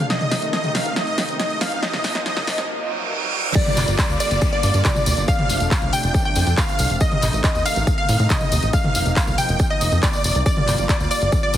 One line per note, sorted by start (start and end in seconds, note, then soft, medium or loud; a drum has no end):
0.00 3.51 C3 medium
0.00 riser medium
0.10 1.81 D#3 medium
0.10 1.81 A3 medium
0.10 3.52 D#4 medium
0.10 0.49 D#5 medium
0.10 snare medium
0.10 closed hi-hat soft
0.21 closed hi-hat soft
0.21 mid tom medium
0.31 0.39 A1 medium
0.31 snare medium
0.31 open hi-hat loud
0.42 0.50 A1 medium
0.42 closed hi-hat soft
0.53 0.72 D#5 medium
0.53 snare medium
0.53 closed hi-hat soft
0.64 0.72 D#2 medium
0.64 closed hi-hat soft
0.64 mid tom medium
0.75 0.95 F5 medium
0.75 snare medium
0.75 open hi-hat loud
0.86 0.93 A1 medium
0.86 closed hi-hat medium
0.96 1.35 D#5 loud
0.96 snare medium
0.96 closed hi-hat soft
1.07 closed hi-hat soft
1.18 1.26 A1 loud
1.18 snare medium
1.18 open hi-hat loud
1.29 1.36 A1 medium
1.29 closed hi-hat medium
1.39 1.59 D#5 medium
1.39 snare medium
1.39 closed hi-hat medium
1.50 closed hi-hat soft
1.61 1.69 A1 loud
1.61 1.81 F5 medium
1.61 snare medium
1.61 open hi-hat loud
1.72 1.79 A1 medium
1.72 closed hi-hat medium
1.83 3.54 F3 medium
1.83 3.54 A#3 medium
1.83 2.21 D#5 loud
1.83 snare medium
1.83 closed hi-hat medium
1.93 snare medium
1.93 closed hi-hat soft
1.93 mid tom medium
2.04 2.12 F1 medium
2.04 snare loud
2.04 open hi-hat loud
2.15 2.23 F1 medium
2.15 snare medium
2.15 closed hi-hat soft
2.26 2.65 D#5 loud
2.26 snare medium
2.26 closed hi-hat soft
2.37 2.44 C2 medium
2.37 snare medium
2.37 closed hi-hat soft
2.37 mid tom medium
2.47 snare loud
2.47 open hi-hat loud
2.58 2.66 F1 medium
2.58 snare medium
2.58 closed hi-hat medium
2.69 reverse cymbal medium
3.55 5.26 D3 medium
3.55 5.26 G3 medium
3.55 5.26 A#3 medium
3.55 5.26 F4 loud
3.55 3.94 D5 loud
3.55 kick loud
3.55 closed hi-hat medium
3.55 crash loud
3.55 tambourine medium
3.55 downlifter medium
3.66 closed hi-hat soft
3.66 mid tom medium
3.77 3.85 G1 medium
3.77 clap soft
3.77 open hi-hat loud
3.77 tambourine medium
3.88 3.95 G1 medium
3.88 closed hi-hat medium
3.88 tambourine soft
3.99 4.18 D5 medium
3.99 kick loud
3.99 clap loud
3.99 closed hi-hat medium
3.99 tambourine medium
4.09 4.17 D2 medium
4.09 closed hi-hat soft
4.09 tambourine soft
4.20 4.49 D5 loud
4.20 open hi-hat loud
4.20 tambourine loud
4.31 4.39 G1 medium
4.31 closed hi-hat medium
4.31 tambourine soft
4.41 kick loud
4.41 closed hi-hat medium
4.41 tambourine soft
4.53 4.82 D5 loud
4.53 4.82 D5 medium
4.53 closed hi-hat soft
4.63 4.71 G2 loud
4.63 open hi-hat loud
4.63 tambourine medium
4.74 4.82 G2 medium
4.74 closed hi-hat medium
4.74 tambourine soft
4.85 5.24 D5 loud
4.85 kick loud
4.85 clap loud
4.85 closed hi-hat medium
4.85 mid tom medium
4.85 tambourine medium
4.96 closed hi-hat soft
4.96 mid tom medium
4.96 tambourine soft
5.06 5.14 D2 loud
5.06 open hi-hat loud
5.06 tambourine loud
5.17 5.25 G1 medium
5.17 closed hi-hat medium
5.17 tambourine soft
5.28 10.42 C3 medium
5.28 6.99 F3 medium
5.28 6.99 A3 medium
5.28 6.99 D4 medium
5.28 5.67 F5 loud
5.28 kick loud
5.28 closed hi-hat medium
5.28 tambourine medium
5.39 closed hi-hat soft
5.39 mid tom medium
5.49 5.57 F1 medium
5.49 open hi-hat loud
5.49 tambourine medium
5.60 5.68 F1 medium
5.60 closed hi-hat medium
5.60 tambourine soft
5.71 5.91 F5 medium
5.71 kick loud
5.71 clap loud
5.71 closed hi-hat medium
5.71 tambourine medium
5.82 5.90 C2 medium
5.82 closed hi-hat soft
5.82 mid tom medium
5.82 tambourine soft
5.93 6.22 G5 loud
5.93 open hi-hat loud
5.93 tambourine loud
6.03 6.11 F1 medium
6.03 closed hi-hat medium
6.03 tambourine soft
6.14 kick loud
6.14 closed hi-hat medium
6.14 tambourine soft
6.25 6.54 G5 loud
6.25 6.54 G5 medium
6.25 closed hi-hat soft
6.35 6.44 F2 loud
6.35 open hi-hat loud
6.35 tambourine medium
6.47 6.54 F2 medium
6.47 closed hi-hat medium
6.47 tambourine soft
6.57 6.96 F5 loud
6.57 kick loud
6.57 clap loud
6.57 closed hi-hat medium
6.57 tambourine medium
6.68 closed hi-hat soft
6.68 tambourine soft
6.79 6.87 C2 medium
6.79 open hi-hat loud
6.79 tambourine medium
6.90 6.98 F1 medium
6.90 closed hi-hat medium
6.90 tambourine soft
7.00 8.72 D#3 medium
7.00 8.72 A3 medium
7.00 10.43 D#4 medium
7.00 7.39 D#5 loud
7.00 7.40 D#5 loud
7.00 kick loud
7.00 closed hi-hat medium
7.00 tambourine medium
7.12 closed hi-hat soft
7.12 mid tom medium
7.22 7.30 A1 medium
7.22 clap soft
7.22 open hi-hat loud
7.22 tambourine loud
7.33 7.41 A1 medium
7.33 closed hi-hat soft
7.33 tambourine soft
7.44 7.63 D#5 medium
7.44 kick loud
7.44 clap loud
7.44 closed hi-hat medium
7.44 tambourine medium
7.55 7.62 D#2 medium
7.55 closed hi-hat soft
7.55 tambourine soft
7.65 7.95 F5 loud
7.65 open hi-hat loud
7.65 tambourine medium
7.76 7.84 A1 medium
7.76 closed hi-hat medium
7.76 tambourine soft
7.87 kick loud
7.87 closed hi-hat soft
7.87 tambourine medium
7.98 8.27 F5 loud
7.98 8.27 F5 medium
7.98 closed hi-hat soft
8.09 8.16 A2 loud
8.09 open hi-hat loud
8.09 tambourine medium
8.19 8.27 A2 medium
8.19 closed hi-hat medium
8.19 tambourine soft
8.30 8.69 D#5 loud
8.30 kick loud
8.30 clap loud
8.30 closed hi-hat medium
8.30 mid tom medium
8.30 tambourine medium
8.41 closed hi-hat soft
8.41 mid tom medium
8.41 tambourine soft
8.52 8.59 D#2 medium
8.52 open hi-hat loud
8.52 tambourine loud
8.63 8.70 A1 medium
8.63 closed hi-hat medium
8.63 tambourine soft
8.73 10.44 F3 medium
8.73 10.44 A#3 medium
8.73 9.12 F5 loud
8.73 kick loud
8.73 closed hi-hat medium
8.73 tambourine medium
8.84 closed hi-hat soft
8.84 mid tom medium
8.95 9.03 F1 medium
8.95 open hi-hat loud
8.95 tambourine loud
9.06 9.13 F1 medium
9.06 closed hi-hat soft
9.06 tambourine soft
9.16 9.36 F5 medium
9.16 kick loud
9.16 clap loud
9.16 closed hi-hat medium
9.16 tambourine medium
9.27 9.35 C2 medium
9.27 closed hi-hat soft
9.27 mid tom medium
9.27 tambourine soft
9.38 9.67 G5 loud
9.38 open hi-hat loud
9.38 tambourine medium
9.49 9.57 F1 medium
9.49 closed hi-hat medium
9.49 tambourine soft
9.59 kick loud
9.59 closed hi-hat medium
9.59 tambourine soft
9.70 9.99 D#5 loud
9.70 10.00 D#5 medium
9.70 closed hi-hat soft
9.81 9.89 F1 loud
9.81 open hi-hat loud
9.81 tambourine loud
9.92 10.00 F2 medium
9.92 closed hi-hat soft
9.92 tambourine soft
10.03 10.42 D5 loud
10.03 kick loud
10.03 clap loud
10.03 closed hi-hat soft
10.03 tambourine medium
10.13 closed hi-hat soft
10.13 tambourine soft
10.24 10.32 F1 loud
10.24 open hi-hat loud
10.24 tambourine loud
10.35 10.43 C2 medium
10.35 closed hi-hat soft
10.35 tambourine soft
10.46 11.57 F3 medium
10.46 11.57 G3 medium
10.46 11.57 A#3 medium
10.46 11.57 F4 medium
10.46 10.85 D5 loud
10.46 kick loud
10.46 closed hi-hat medium
10.46 tambourine medium
10.57 closed hi-hat soft
10.57 mid tom medium
10.68 10.75 G1 medium
10.68 clap soft
10.68 open hi-hat loud
10.68 tambourine medium
10.78 10.86 G1 medium
10.78 closed hi-hat soft
10.78 tambourine soft
10.89 11.09 D5 medium
10.89 kick loud
10.89 clap loud
10.89 closed hi-hat medium
10.89 tambourine medium
11.00 11.08 D2 medium
11.00 closed hi-hat soft
11.00 tambourine soft
11.11 11.40 D5 loud
11.11 open hi-hat loud
11.11 tambourine medium
11.22 11.29 G1 medium
11.22 closed hi-hat medium
11.22 tambourine soft
11.32 kick loud
11.32 closed hi-hat soft
11.32 tambourine soft
11.43 11.57 D5 loud
11.43 11.57 D5 medium
11.43 closed hi-hat soft
11.54 11.57 G2 medium
11.54 open hi-hat loud
11.54 tambourine medium